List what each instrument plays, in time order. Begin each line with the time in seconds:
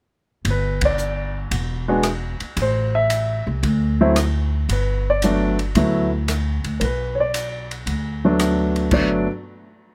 0.45 upright bass G1, kick, ride
0.50 grand piano B4
0.81 grand piano D5, kick, ride
0.98 hi-hat pedal
1.51 upright bass E1, kick, ride
1.88 grand piano G#3 B3 D4 F#4
2.03 cross-stick, hi-hat pedal, ride
2.40 muted upright bass stroke, ride
2.57 upright bass A1, kick, ride
2.62 grand piano C5
2.95 grand piano E5
3.10 hi-hat pedal, ride
3.47 upright bass C2
3.63 upright bass D2, kick, ride
4.01 grand piano F#3 A3 C4 E4
4.16 cross-stick, hi-hat pedal, ride
4.69 upright bass G1, grand piano B4, kick, ride
5.10 grand piano D5
5.22 grand piano F#3 A3 B3 D4, hi-hat pedal, ride
5.59 ride
5.75 upright bass D2, grand piano F#3 A3 B3 E4, kick, ride
6.28 cross-stick, hi-hat pedal, ride
6.64 upright bass D2, ride
6.80 upright bass B1, grand piano A#4, kick, ride
6.84 grand piano B4
7.15 grand piano C#5
7.20 grand piano D5
7.34 hi-hat pedal, ride
7.71 ride
7.86 upright bass D2, kick, ride
8.25 grand piano F#3 A3 B3 D4
8.39 cross-stick, hi-hat pedal, ride
8.76 ride
8.91 upright bass G1, grand piano F#3 A3 B3 D4 D5, kick, crash